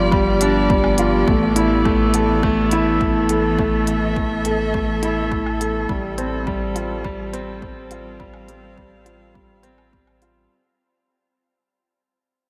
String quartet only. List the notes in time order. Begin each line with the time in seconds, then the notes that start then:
Already playing: F3 B3 G4 D5
1.28 E3
2.68 A4
3.33 E5
5.89 G3
6.40 C4
7.96 F5